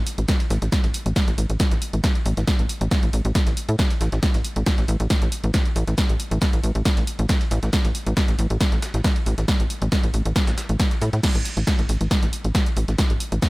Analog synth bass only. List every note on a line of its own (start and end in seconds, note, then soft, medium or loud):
0.18 0.26 A1 medium
0.50 0.59 A1 loud
0.62 0.69 A1 medium
0.84 0.91 A1 medium
1.06 1.13 A1 medium
1.28 1.35 A1 medium
1.38 1.46 A1 medium
1.50 1.57 A1 medium
1.72 1.79 A1 medium
1.93 2.01 A1 medium
2.26 2.34 A1 loud
2.37 2.45 A1 medium
2.59 2.67 A1 medium
2.81 2.88 A1 medium
3.03 3.10 A1 medium
3.13 3.22 A1 medium
3.25 3.32 A1 medium
3.47 3.54 A1 medium
3.69 3.76 A2 medium
4.01 4.09 A1 loud
4.13 4.20 A1 medium
4.34 4.42 A1 medium
4.56 4.64 A1 medium
4.78 4.86 A1 medium
4.88 4.97 A1 loud
5.00 5.07 A1 medium
5.22 5.29 A1 medium
5.44 5.51 A1 medium
5.76 5.84 A1 loud
5.88 5.95 A1 medium
6.09 6.17 A1 medium
6.31 6.39 A1 medium
6.53 6.61 A1 medium
6.64 6.72 A1 medium
6.75 6.83 A1 medium
6.97 7.04 A1 medium
7.19 7.26 A1 medium
7.51 7.59 A1 loud
7.63 7.70 A1 medium
7.85 7.92 A1 medium
8.07 8.14 A1 medium
8.28 8.36 A1 medium
8.39 8.47 A1 medium
8.50 8.58 A1 medium
8.72 8.80 A1 medium
8.94 9.02 A1 medium
9.26 9.35 A1 loud
9.38 9.45 A1 medium
9.60 9.67 A1 medium
9.82 9.89 A1 medium
10.04 10.11 A1 medium
10.14 10.22 A1 medium
10.26 10.33 A1 medium
10.48 10.55 A1 medium
10.69 10.77 A1 medium
11.02 11.10 A2 loud
11.13 11.21 A2 medium
11.35 11.42 A1 medium
11.57 11.64 A1 medium
11.79 11.86 A1 medium
11.89 11.97 A1 loud
12.01 12.08 A1 medium
12.23 12.30 A1 medium
12.45 12.52 A1 medium
12.77 12.85 A1 loud
12.88 12.96 A1 medium
13.10 13.18 A1 medium
13.32 13.40 A1 medium